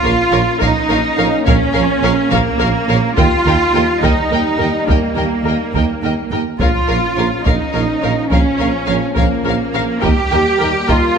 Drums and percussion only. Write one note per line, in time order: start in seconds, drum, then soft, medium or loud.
0.62 taiko medium
1.48 taiko medium
2.32 taiko medium
3.18 taiko loud
4.03 taiko medium
4.89 taiko medium
5.74 taiko medium
6.60 taiko medium
7.46 taiko medium
8.31 taiko medium
9.16 taiko medium
10.03 taiko medium
10.89 taiko medium